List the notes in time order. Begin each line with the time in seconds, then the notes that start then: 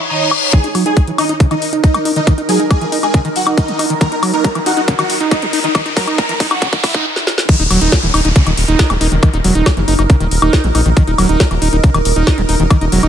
Already playing: D#4 C#5, reverse cymbal
0.10 D#4
0.31 high woodblock
0.53 D#3 D#4 G#4 A#4, kick, closed hi-hat, riser
0.64 D#4, closed hi-hat
0.75 F#3, open hi-hat, high woodblock
0.86 D#4 G#4, closed hi-hat
0.97 D#3, kick, closed hi-hat
1.07 E3, closed hi-hat
1.18 D#4, open hi-hat, high woodblock
1.29 D#4, closed hi-hat
1.40 C#3, kick, closed hi-hat
1.51 D#3 D#4, closed hi-hat, high woodblock
1.62 open hi-hat
1.73 D#4, closed hi-hat
1.84 D#4, kick, closed hi-hat
1.94 D#3, closed hi-hat, high woodblock
2.05 D#4, open hi-hat
2.16 D#3 D#4, closed hi-hat
2.27 D#3, kick, closed hi-hat, high woodblock
2.38 D#4, closed hi-hat
2.49 F#3 G#4, open hi-hat
2.60 D#4, closed hi-hat
2.70 D#3 G#4, kick, closed hi-hat, high woodblock
2.81 E3, closed hi-hat
2.92 D#4, open hi-hat
3.03 D#4 G#4, closed hi-hat, high woodblock
3.14 C#3, kick, closed hi-hat
3.25 D#3, closed hi-hat
3.36 F#4, open hi-hat
3.47 D#4, closed hi-hat, high woodblock
3.58 D#4, kick, closed hi-hat
3.68 D#3, closed hi-hat
3.79 D#4, open hi-hat, high woodblock
3.90 D#3, closed hi-hat
4.01 D#3 A#4, kick, closed hi-hat
4.12 D#4, closed hi-hat
4.23 F#3, open hi-hat, high woodblock
4.33 D#4 A#4, closed hi-hat
4.44 D#3, kick, closed hi-hat
4.55 E3, closed hi-hat, high woodblock
4.66 D#4 F#4, open hi-hat
4.77 D#4, closed hi-hat
4.88 C#3, kick, closed hi-hat
4.99 D#3 F#4, closed hi-hat, high woodblock
5.10 open hi-hat
5.20 D#4, closed hi-hat
5.31 D#4, kick, closed hi-hat, high woodblock
5.42 D#3, closed hi-hat
5.53 D#4, open hi-hat
5.64 D#3 D#4, closed hi-hat
5.75 D#3, kick, closed hi-hat, high woodblock
5.86 D#4, closed hi-hat
5.97 F#3 A#4, kick, open hi-hat
6.07 D#4, closed hi-hat, high woodblock
6.18 D#3 A#4, kick, closed hi-hat
6.29 E3, closed hi-hat
6.40 D#4, kick, open hi-hat
6.51 D#4 F#4, closed hi-hat, high woodblock
6.62 C#3, kick, closed hi-hat
6.73 D#3, kick, closed hi-hat
6.84 E4, kick, open hi-hat, high woodblock
6.94 D#4, kick, closed hi-hat
7.16 snare
7.27 snare
7.38 snare
7.49 D#3 D#4 A#4, kick, closed hi-hat, crash, downlifter
7.60 D#1 D#4, closed hi-hat
7.71 D#1 F#3, open hi-hat, high woodblock
7.81 D#1 D#4, closed hi-hat
7.92 D#3, kick, snare, closed hi-hat
8.03 D#1 E3, closed hi-hat
8.14 D#1 D#4, open hi-hat, high woodblock
8.25 D#1 D#4, closed hi-hat
8.36 C#3, kick, closed hi-hat
8.47 D#1 D#3, closed hi-hat, high woodblock
8.57 D#1, open hi-hat
8.68 D#1 D#4, closed hi-hat
8.79 kick, snare, closed hi-hat
8.90 D#1 D#3, closed hi-hat, high woodblock
9.01 D#1 D#4, open hi-hat
9.12 E1 D#3, closed hi-hat
9.23 D#3, kick, closed hi-hat, high woodblock
9.34 D#1 D#4, closed hi-hat
9.44 E1 F#3, open hi-hat
9.55 D#1 D#4, closed hi-hat
9.66 D#3, kick, snare, closed hi-hat, high woodblock
9.77 F#1 E3, closed hi-hat
9.88 F#1 D#4, open hi-hat
9.99 F#1 D#4, closed hi-hat, high woodblock
10.10 C#3, kick, closed hi-hat
10.20 D#1 D#3, closed hi-hat
10.31 D#1, open hi-hat
10.42 D#1 D#4, closed hi-hat, high woodblock
10.53 kick, snare, closed hi-hat
10.64 A#1 D#3, closed hi-hat
10.75 A#1 D#4, open hi-hat, high woodblock
10.86 A#1 D#3, closed hi-hat
10.97 D#3, kick, closed hi-hat
11.07 D#1 D#4, closed hi-hat
11.18 D#1 F#3, open hi-hat, high woodblock
11.29 D#1 D#4, closed hi-hat
11.40 D#3, kick, snare, closed hi-hat
11.51 D#1 E3, closed hi-hat, high woodblock
11.62 D#1 D#4, open hi-hat
11.73 D#1 D#4, closed hi-hat
11.84 C#3, kick, closed hi-hat
11.94 D#1 D#3, closed hi-hat, high woodblock
12.05 D#1, open hi-hat
12.16 D#1 D#4, closed hi-hat
12.27 kick, snare, closed hi-hat, high woodblock
12.38 D#1 D#3, closed hi-hat
12.49 D#1 D#4, open hi-hat
12.60 E1 D#3, closed hi-hat
12.70 D#3, kick, closed hi-hat, high woodblock
12.81 D#1 D#4, closed hi-hat
12.92 E1 F#3, open hi-hat
13.03 D#1 D#4, closed hi-hat, high woodblock